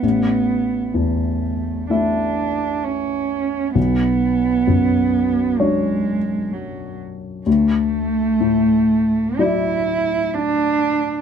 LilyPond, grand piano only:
\new Staff \with { instrumentName = "Grand piano" } { \clef bass \time 4/4 \key b \dorian \tempo 4 = 65 a,,4 e,4 <a e' e''>2 | b,,4 fis,4 <fis d' cis''>2 | d,4 a,4 <fis e' d''>2 | }